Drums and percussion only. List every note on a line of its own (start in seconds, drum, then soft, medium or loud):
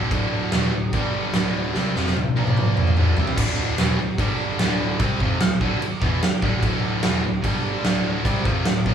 0.11 kick loud
0.11 crash medium
0.52 snare loud
0.52 crash medium
0.93 kick loud
0.93 crash medium
1.34 snare loud
1.34 crash medium
1.75 snare medium
1.96 snare medium
2.07 snare medium
2.16 high tom medium
2.37 high tom medium
2.47 mid tom medium
2.57 mid tom medium
2.77 mid tom medium
2.87 mid tom medium
2.97 mid tom medium
3.17 floor tom loud
3.27 floor tom loud
3.37 kick loud
3.37 crash loud
3.37 crash medium
3.78 snare loud
3.78 crash medium
4.18 kick loud
4.18 crash medium
4.59 snare loud
4.59 crash medium
5.00 kick loud
5.00 crash medium
5.20 kick loud
5.41 snare loud
5.41 crash medium
5.61 kick loud
5.82 crash medium
6.02 kick loud
6.23 snare loud
6.23 crash medium
6.42 kick loud
6.63 kick loud
6.63 crash medium
7.03 snare loud
7.03 crash medium
7.44 kick loud
7.44 crash medium
7.85 snare loud
7.85 crash medium
8.25 kick loud
8.25 crash medium
8.45 kick loud
8.65 snare loud
8.65 crash medium
8.86 kick loud